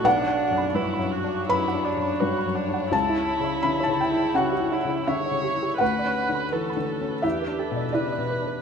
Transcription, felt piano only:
<<
  \new Staff \with { instrumentName = "Felt piano" } { \time 4/4 \key b \minor \tempo 4 = 83 fis''2 b''2 | a''4 b''16 a''16 g''8 fis''4 e''8 r8 | fis''2 e''4 d''4 | }
  \new Staff \with { instrumentName = "Felt piano" } { \clef bass \time 4/4 \key b \minor \tuplet 3/2 { b,,8 d'8 fis,8 g,8 fis,8 d'8 fis,8 d'8 fis,8 g,8 fis,8 d'8 } | \tuplet 3/2 { cis,8 e'8 cis8 d8 cis8 e'8 cis8 e'8 cis8 d8 cis8 e'8 } | \tuplet 3/2 { d,8 cis'8 d8 e8 d8 cis'8 e,8 d'8 b,8 cis8 b,8 d'8 } | }
>>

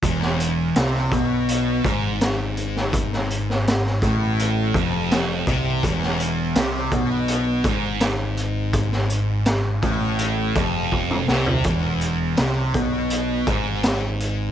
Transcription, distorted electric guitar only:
\new Staff \with { instrumentName = "Distorted electric guitar" } { \clef bass \time 4/4 \tempo 4 = 82 e,4 c8 b,4 gis,4.~ | gis,4. a,4 f,4 c8 | e,4 c8 b,4 gis,4.~ | gis,4. a,4 f,4 c8 |
e,4 c8 b,4 gis,4. | }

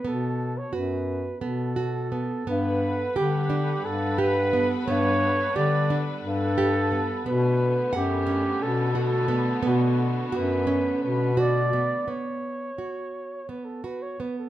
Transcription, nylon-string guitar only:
\new Staff \with { instrumentName = "Nylon-string guitar" } { \time 7/8 \key b \minor \tempo 4 = 87 b4 fis'4 b8 fis'8 b8 | b4 g'8 d'4 g'8 b8 | b4 g'8 d'4 g'8 b8 | b4 fis''8 cis'4 fis'8 b8 |
b4 fis'8 cis'4 fis'8 b8 | b4 fis'4 b8 fis'8 b8 | }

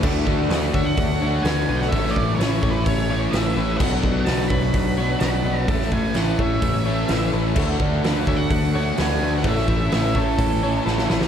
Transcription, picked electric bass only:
\new Staff \with { instrumentName = "Picked electric bass" } { \clef bass \time 4/4 \key a \major \tempo 4 = 128 d,8 d,8 d,8 d,8 d,4 d,8 b,,8 | a,,8 a,,8 a,,8 a,,8 a,,4 a,,8 a,,8 | b,,8 b,,8 b,,8 b,,8 b,,4 b,,8 b,,8 | a,,8 a,,8 a,,8 a,,8 a,,4 a,,8 a,,8 |
d,8 d,8 d,8 d,8 d,4 d,8 d,8 | a,,8 a,,8 a,,8 a,,8 a,,4 a,,8 a,,8 | }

